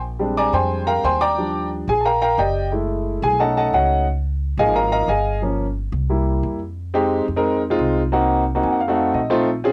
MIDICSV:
0, 0, Header, 1, 3, 480
1, 0, Start_track
1, 0, Key_signature, -4, "minor"
1, 0, Tempo, 337648
1, 37, Time_signature, 4, 2, 24, 8
1, 13824, End_track
2, 0, Start_track
2, 0, Title_t, "Grand piano"
2, 0, Program_c, 0, 0
2, 273, Note_on_c, 0, 55, 59
2, 277, Note_on_c, 0, 56, 54
2, 281, Note_on_c, 0, 60, 55
2, 289, Note_on_c, 0, 62, 67
2, 531, Note_on_c, 0, 86, 102
2, 539, Note_on_c, 0, 82, 84
2, 540, Note_on_c, 0, 74, 81
2, 541, Note_on_c, 0, 80, 80
2, 745, Note_off_c, 0, 80, 0
2, 756, Note_off_c, 0, 86, 0
2, 760, Note_off_c, 0, 82, 0
2, 761, Note_off_c, 0, 74, 0
2, 761, Note_on_c, 0, 84, 92
2, 767, Note_on_c, 0, 80, 77
2, 768, Note_on_c, 0, 72, 77
2, 769, Note_on_c, 0, 79, 77
2, 1204, Note_off_c, 0, 84, 0
2, 1208, Note_off_c, 0, 72, 0
2, 1208, Note_off_c, 0, 80, 0
2, 1209, Note_off_c, 0, 79, 0
2, 1235, Note_on_c, 0, 82, 96
2, 1242, Note_on_c, 0, 70, 70
2, 1242, Note_on_c, 0, 77, 74
2, 1243, Note_on_c, 0, 79, 78
2, 1468, Note_off_c, 0, 82, 0
2, 1471, Note_off_c, 0, 70, 0
2, 1471, Note_off_c, 0, 77, 0
2, 1471, Note_off_c, 0, 79, 0
2, 1487, Note_on_c, 0, 84, 101
2, 1493, Note_on_c, 0, 79, 78
2, 1493, Note_on_c, 0, 80, 79
2, 1494, Note_on_c, 0, 72, 80
2, 1702, Note_off_c, 0, 79, 0
2, 1714, Note_off_c, 0, 84, 0
2, 1717, Note_off_c, 0, 72, 0
2, 1717, Note_off_c, 0, 80, 0
2, 1720, Note_on_c, 0, 86, 107
2, 1723, Note_on_c, 0, 79, 82
2, 1725, Note_on_c, 0, 82, 81
2, 1726, Note_on_c, 0, 74, 83
2, 1896, Note_off_c, 0, 55, 0
2, 1898, Note_off_c, 0, 56, 0
2, 1900, Note_off_c, 0, 60, 0
2, 1904, Note_off_c, 0, 62, 0
2, 1956, Note_on_c, 0, 53, 54
2, 1961, Note_on_c, 0, 55, 50
2, 1971, Note_on_c, 0, 62, 59
2, 2386, Note_off_c, 0, 86, 0
2, 2388, Note_off_c, 0, 79, 0
2, 2389, Note_off_c, 0, 82, 0
2, 2390, Note_off_c, 0, 74, 0
2, 2638, Note_off_c, 0, 53, 0
2, 2641, Note_off_c, 0, 55, 0
2, 2646, Note_off_c, 0, 62, 0
2, 2687, Note_on_c, 0, 80, 95
2, 2695, Note_on_c, 0, 68, 77
2, 2853, Note_on_c, 0, 81, 61
2, 2888, Note_off_c, 0, 81, 0
2, 2913, Note_off_c, 0, 80, 0
2, 2918, Note_off_c, 0, 68, 0
2, 2921, Note_on_c, 0, 82, 89
2, 2923, Note_on_c, 0, 70, 74
2, 2924, Note_on_c, 0, 79, 69
2, 2926, Note_on_c, 0, 77, 73
2, 3129, Note_off_c, 0, 82, 0
2, 3135, Note_off_c, 0, 70, 0
2, 3138, Note_off_c, 0, 77, 0
2, 3138, Note_off_c, 0, 79, 0
2, 3151, Note_on_c, 0, 82, 96
2, 3157, Note_on_c, 0, 70, 83
2, 3160, Note_on_c, 0, 77, 77
2, 3160, Note_on_c, 0, 79, 77
2, 3376, Note_off_c, 0, 79, 0
2, 3385, Note_off_c, 0, 82, 0
2, 3388, Note_off_c, 0, 70, 0
2, 3389, Note_off_c, 0, 77, 0
2, 3398, Note_on_c, 0, 79, 87
2, 3399, Note_on_c, 0, 67, 69
2, 3399, Note_on_c, 0, 74, 70
2, 3401, Note_on_c, 0, 75, 72
2, 3842, Note_off_c, 0, 67, 0
2, 3842, Note_off_c, 0, 74, 0
2, 3842, Note_off_c, 0, 79, 0
2, 3844, Note_off_c, 0, 75, 0
2, 3860, Note_on_c, 0, 56, 53
2, 3869, Note_on_c, 0, 57, 50
2, 3873, Note_on_c, 0, 64, 58
2, 4598, Note_on_c, 0, 80, 99
2, 4602, Note_on_c, 0, 68, 81
2, 4778, Note_off_c, 0, 56, 0
2, 4782, Note_off_c, 0, 57, 0
2, 4785, Note_off_c, 0, 64, 0
2, 4823, Note_on_c, 0, 57, 60
2, 4828, Note_off_c, 0, 80, 0
2, 4828, Note_on_c, 0, 61, 52
2, 4830, Note_off_c, 0, 68, 0
2, 4832, Note_on_c, 0, 81, 85
2, 4837, Note_on_c, 0, 63, 63
2, 4838, Note_on_c, 0, 75, 64
2, 4839, Note_on_c, 0, 78, 69
2, 4841, Note_on_c, 0, 69, 73
2, 5056, Note_off_c, 0, 81, 0
2, 5060, Note_off_c, 0, 69, 0
2, 5063, Note_off_c, 0, 78, 0
2, 5065, Note_off_c, 0, 75, 0
2, 5077, Note_on_c, 0, 81, 96
2, 5082, Note_on_c, 0, 69, 74
2, 5085, Note_on_c, 0, 78, 80
2, 5086, Note_on_c, 0, 75, 74
2, 5297, Note_off_c, 0, 78, 0
2, 5304, Note_off_c, 0, 75, 0
2, 5308, Note_off_c, 0, 81, 0
2, 5310, Note_off_c, 0, 69, 0
2, 5318, Note_on_c, 0, 78, 87
2, 5323, Note_on_c, 0, 73, 71
2, 5326, Note_on_c, 0, 75, 70
2, 5327, Note_on_c, 0, 66, 67
2, 5739, Note_off_c, 0, 57, 0
2, 5741, Note_off_c, 0, 61, 0
2, 5746, Note_off_c, 0, 63, 0
2, 5761, Note_off_c, 0, 78, 0
2, 5764, Note_off_c, 0, 73, 0
2, 5765, Note_off_c, 0, 75, 0
2, 5766, Note_off_c, 0, 66, 0
2, 6516, Note_on_c, 0, 53, 58
2, 6526, Note_on_c, 0, 58, 55
2, 6528, Note_on_c, 0, 77, 78
2, 6528, Note_on_c, 0, 80, 100
2, 6530, Note_on_c, 0, 75, 80
2, 6531, Note_on_c, 0, 68, 81
2, 6533, Note_on_c, 0, 63, 65
2, 6740, Note_off_c, 0, 75, 0
2, 6741, Note_off_c, 0, 77, 0
2, 6752, Note_off_c, 0, 80, 0
2, 6754, Note_off_c, 0, 68, 0
2, 6760, Note_on_c, 0, 70, 77
2, 6760, Note_on_c, 0, 82, 89
2, 6761, Note_on_c, 0, 75, 77
2, 6763, Note_on_c, 0, 77, 79
2, 6974, Note_off_c, 0, 82, 0
2, 6978, Note_off_c, 0, 75, 0
2, 6979, Note_off_c, 0, 70, 0
2, 6979, Note_off_c, 0, 77, 0
2, 6995, Note_on_c, 0, 82, 102
2, 6999, Note_on_c, 0, 75, 75
2, 7001, Note_on_c, 0, 70, 78
2, 7001, Note_on_c, 0, 77, 77
2, 7198, Note_off_c, 0, 53, 0
2, 7203, Note_off_c, 0, 58, 0
2, 7206, Note_off_c, 0, 63, 0
2, 7217, Note_off_c, 0, 77, 0
2, 7220, Note_off_c, 0, 75, 0
2, 7226, Note_off_c, 0, 82, 0
2, 7229, Note_off_c, 0, 70, 0
2, 7235, Note_on_c, 0, 80, 90
2, 7239, Note_on_c, 0, 77, 73
2, 7240, Note_on_c, 0, 68, 71
2, 7241, Note_on_c, 0, 75, 74
2, 7679, Note_off_c, 0, 80, 0
2, 7681, Note_off_c, 0, 77, 0
2, 7682, Note_off_c, 0, 68, 0
2, 7682, Note_off_c, 0, 75, 0
2, 7702, Note_on_c, 0, 53, 57
2, 7712, Note_on_c, 0, 58, 52
2, 7722, Note_on_c, 0, 61, 65
2, 8025, Note_off_c, 0, 53, 0
2, 8030, Note_off_c, 0, 58, 0
2, 8036, Note_off_c, 0, 61, 0
2, 8664, Note_on_c, 0, 55, 55
2, 8672, Note_on_c, 0, 58, 51
2, 8677, Note_on_c, 0, 64, 64
2, 9352, Note_off_c, 0, 55, 0
2, 9356, Note_off_c, 0, 58, 0
2, 9358, Note_off_c, 0, 64, 0
2, 9862, Note_on_c, 0, 56, 87
2, 9866, Note_on_c, 0, 60, 80
2, 9874, Note_on_c, 0, 63, 75
2, 9880, Note_on_c, 0, 67, 98
2, 10287, Note_off_c, 0, 56, 0
2, 10289, Note_off_c, 0, 60, 0
2, 10293, Note_off_c, 0, 63, 0
2, 10296, Note_off_c, 0, 67, 0
2, 10466, Note_on_c, 0, 56, 81
2, 10469, Note_on_c, 0, 60, 75
2, 10476, Note_on_c, 0, 63, 77
2, 10478, Note_on_c, 0, 70, 90
2, 10806, Note_off_c, 0, 56, 0
2, 10807, Note_off_c, 0, 60, 0
2, 10811, Note_off_c, 0, 63, 0
2, 10812, Note_off_c, 0, 70, 0
2, 10949, Note_on_c, 0, 56, 85
2, 10949, Note_on_c, 0, 60, 78
2, 10959, Note_on_c, 0, 63, 78
2, 10962, Note_on_c, 0, 65, 97
2, 11372, Note_off_c, 0, 56, 0
2, 11372, Note_off_c, 0, 60, 0
2, 11377, Note_off_c, 0, 63, 0
2, 11379, Note_off_c, 0, 65, 0
2, 11544, Note_on_c, 0, 58, 79
2, 11550, Note_on_c, 0, 60, 77
2, 11555, Note_on_c, 0, 63, 78
2, 11559, Note_on_c, 0, 66, 89
2, 11970, Note_off_c, 0, 58, 0
2, 11973, Note_off_c, 0, 60, 0
2, 11976, Note_off_c, 0, 63, 0
2, 11978, Note_off_c, 0, 66, 0
2, 12153, Note_on_c, 0, 58, 79
2, 12156, Note_on_c, 0, 60, 70
2, 12162, Note_on_c, 0, 63, 73
2, 12167, Note_on_c, 0, 66, 86
2, 12276, Note_on_c, 0, 80, 67
2, 12388, Note_off_c, 0, 80, 0
2, 12400, Note_on_c, 0, 78, 68
2, 12491, Note_off_c, 0, 58, 0
2, 12493, Note_off_c, 0, 60, 0
2, 12496, Note_off_c, 0, 63, 0
2, 12498, Note_off_c, 0, 66, 0
2, 12510, Note_off_c, 0, 78, 0
2, 12521, Note_on_c, 0, 77, 71
2, 12623, Note_on_c, 0, 57, 81
2, 12633, Note_on_c, 0, 60, 77
2, 12637, Note_on_c, 0, 63, 74
2, 12642, Note_on_c, 0, 66, 88
2, 12739, Note_off_c, 0, 77, 0
2, 12761, Note_on_c, 0, 77, 59
2, 12983, Note_off_c, 0, 77, 0
2, 12995, Note_on_c, 0, 75, 69
2, 13051, Note_off_c, 0, 57, 0
2, 13056, Note_off_c, 0, 60, 0
2, 13058, Note_off_c, 0, 63, 0
2, 13061, Note_off_c, 0, 66, 0
2, 13220, Note_off_c, 0, 75, 0
2, 13220, Note_on_c, 0, 57, 93
2, 13224, Note_on_c, 0, 60, 88
2, 13228, Note_on_c, 0, 63, 86
2, 13228, Note_on_c, 0, 72, 70
2, 13234, Note_on_c, 0, 65, 104
2, 13456, Note_off_c, 0, 72, 0
2, 13470, Note_off_c, 0, 57, 0
2, 13472, Note_off_c, 0, 60, 0
2, 13474, Note_off_c, 0, 63, 0
2, 13477, Note_off_c, 0, 65, 0
2, 13704, Note_on_c, 0, 60, 87
2, 13708, Note_on_c, 0, 61, 85
2, 13716, Note_on_c, 0, 65, 83
2, 13717, Note_on_c, 0, 68, 104
2, 13824, Note_off_c, 0, 60, 0
2, 13824, Note_off_c, 0, 61, 0
2, 13824, Note_off_c, 0, 65, 0
2, 13824, Note_off_c, 0, 68, 0
2, 13824, End_track
3, 0, Start_track
3, 0, Title_t, "Upright bass"
3, 0, Program_c, 1, 32
3, 0, Note_on_c, 1, 34, 89
3, 672, Note_off_c, 1, 34, 0
3, 747, Note_on_c, 1, 41, 92
3, 1420, Note_off_c, 1, 41, 0
3, 1473, Note_on_c, 1, 39, 89
3, 2592, Note_off_c, 1, 39, 0
3, 2666, Note_on_c, 1, 34, 91
3, 3339, Note_off_c, 1, 34, 0
3, 3385, Note_on_c, 1, 30, 94
3, 4507, Note_off_c, 1, 30, 0
3, 4582, Note_on_c, 1, 35, 97
3, 5256, Note_off_c, 1, 35, 0
3, 5309, Note_on_c, 1, 37, 89
3, 6429, Note_off_c, 1, 37, 0
3, 6502, Note_on_c, 1, 32, 98
3, 7176, Note_off_c, 1, 32, 0
3, 7221, Note_on_c, 1, 31, 91
3, 8345, Note_off_c, 1, 31, 0
3, 8419, Note_on_c, 1, 36, 95
3, 9094, Note_off_c, 1, 36, 0
3, 9143, Note_on_c, 1, 41, 93
3, 10268, Note_off_c, 1, 41, 0
3, 10348, Note_on_c, 1, 41, 86
3, 11021, Note_off_c, 1, 41, 0
3, 11069, Note_on_c, 1, 36, 87
3, 12193, Note_off_c, 1, 36, 0
3, 12271, Note_on_c, 1, 41, 88
3, 12945, Note_off_c, 1, 41, 0
3, 12993, Note_on_c, 1, 34, 83
3, 13824, Note_off_c, 1, 34, 0
3, 13824, End_track
0, 0, End_of_file